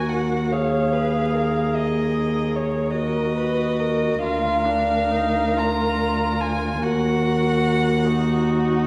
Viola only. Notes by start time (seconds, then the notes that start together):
Already playing: F#4
0.52 G#4
2.96 F#4
4.23 F4
4.65 D4
5.11 D#4
5.57 F4
6.82 F#4
8.05 D#4